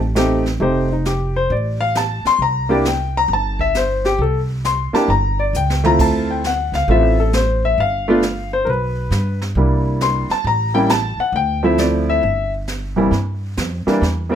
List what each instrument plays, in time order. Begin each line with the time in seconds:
Already playing: upright bass A1
0.15 grand piano A3 C4 D#4 G4, snare, hi-hat pedal
0.46 snare
0.60 upright bass F1, grand piano A3 C4 D#4 G4 C5, brush sweep
0.93 grand piano D#4
1.05 grand piano G4, snare, hi-hat pedal
1.36 grand piano C5
1.50 upright bass A1, grand piano D5, brush sweep
1.81 grand piano F5
1.95 grand piano A5, snare, hi-hat pedal
2.25 grand piano C6, muted upright bass stroke, snare
2.39 upright bass C2, grand piano A#5, brush sweep
2.69 grand piano A#3 D4 E4 G4 D5
2.85 grand piano G5, snare, hi-hat pedal
3.17 grand piano A#5
3.28 upright bass G1, brush sweep
3.33 grand piano A5
3.59 grand piano E5, kick
3.74 grand piano C5, snare, hi-hat pedal
4.05 grand piano G4, snare
4.18 upright bass C2, grand piano A4, brush sweep
4.64 grand piano C6, snare, hi-hat pedal
4.93 grand piano A#3 D4 E4 G4 A5, muted upright bass stroke, snare
5.08 upright bass G1, grand piano A#5, brush sweep
5.39 grand piano D5
5.53 upright bass C#2, grand piano G5, hi-hat pedal
5.70 snare
5.84 grand piano A3 C4 E4 F4 A#5, mid tom
5.99 upright bass D2, grand piano A5, brush sweep, kick, crash
6.31 grand piano G5
6.44 grand piano F#5, snare, hi-hat pedal
6.72 upright bass C#2, grand piano F5, snare
6.88 upright bass A1, grand piano A3 C4 E4 F4 E5, brush sweep
7.20 grand piano A4
7.33 grand piano C5, snare, hi-hat pedal
7.65 grand piano E5
7.78 upright bass G1, grand piano F5, brush sweep
8.08 grand piano A3 B3 D4 F4
8.22 snare, hi-hat pedal
8.53 grand piano C5
8.65 upright bass B1, grand piano A#4, brush sweep
8.70 grand piano B4
9.11 upright bass G2, snare, hi-hat pedal
9.42 snare
9.55 upright bass C2, grand piano G3 A#3 D4 E4, brush sweep
10.00 grand piano C6, snare, hi-hat pedal
10.29 grand piano A5, muted upright bass stroke, snare
10.44 upright bass A1, grand piano A#5, brush sweep
10.74 grand piano G3 A#3 C#4 E4 G5
10.89 grand piano A5, snare, hi-hat pedal
11.17 grand piano F#5, muted upright bass stroke
11.32 upright bass D2, grand piano G5, brush sweep
11.63 grand piano F3 A3 C4 E4 E5
11.78 grand piano D5, snare, hi-hat pedal
12.10 grand piano E5
12.23 upright bass G1, brush sweep
12.67 snare, hi-hat pedal
12.96 grand piano C2 E3 G3 A#3 E4
13.11 upright bass G2, brush sweep, snare
13.57 upright bass F2, snare, hi-hat pedal
13.87 grand piano E3 G3 A#3 D4, muted upright bass stroke, snare
14.01 upright bass E2, brush sweep, snare
14.29 grand piano E3 G3 A#3 C4